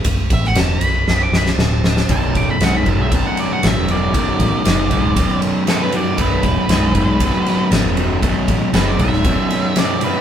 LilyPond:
<<
  \new Staff \with { instrumentName = "Lead electric guitar" } { \time 4/4 \key b \minor \tempo 4 = 117 r8 e''16 fis''16 a''16 b''4 d'''16 b''16 a''8. a''8 | a''8 d'''16 b''16 fis''16 b''16 a''16 e''16 a''16 fis''16 d''16 fis''16 e''8 d''8~ | d''2~ d''8 r8 a'16 b'16 d''8 | b'2. r4 |
r4 b'16 d''16 e''4. d''8 b'8 | }
  \new Staff \with { instrumentName = "Distorted electric guitar" } { \clef bass \time 4/4 \key b \minor r1 | <b,, fis,>4 <b,, gis,>8 <b,, gis,>8 <b,, fis,>4 <b,, fis,>8 <b,, fis,>8 | <b,, fis,>4 <b,, gis,>8 <b,, gis,>8 <b,, fis,>4 <b,, fis,>8 <b,, fis,>8 | <b,, fis,>4 <b,, gis,>8 <b,, gis,>8 <b,, fis,>4 <b,, fis,>8 <b,, fis,>8 |
<b,, fis,>4 <b,, gis,>8 <b,, gis,>8 <b,, fis,>4 <b,, fis,>8 <b,, fis,>8 | }
  \new Staff \with { instrumentName = "Fingered electric bass" } { \clef bass \time 4/4 \key b \minor b,,,8 a,,8 e,,8 b,,,8 b,,,8 b,,,8 d,,4 | b,,,8 d,,16 r16 b,,,8 fis,,16 b,,8 r8. a,,16 e,,8. | b,,,8 a,,16 r16 fis,,8 b,,16 d,,8 r4. r16 | b,,,8 d,,16 r16 b,,,8 fis,,16 b,,8 r8. a,,16 e,,8. |
b,,,8 a,,16 r16 fis,,8 b,,16 d,,8 r4. r16 | }
  \new DrumStaff \with { instrumentName = "Drums" } \drummode { \time 4/4 <bd cymr>8 <bd cymr>16 sn16 <cymr sn>8 cymr8 sn8 sn16 sn16 sn8 sn16 sn16 | <bd cymr>8 <bd cymr>8 <cymr sn>8 <bd cymr>8 <bd cymr>8 cymr8 <cymr sn>8 cymr8 | <bd cymr>8 <bd cymr>8 <cymr sn>8 <bd cymr>8 <bd cymr>8 cymr8 <cymr sn>8 cymr8 | <bd cymr>8 <bd cymr>8 <cymr sn>8 <bd cymr>8 <bd cymr>8 <cymr sn>8 <cymr sn>8 cymr8 |
<bd cymr>8 <bd cymr>8 <cymr sn>8 <bd cymr>16 sn16 <bd cymr>8 <cymr sn>8 <cymr sn>8 cymr8 | }
>>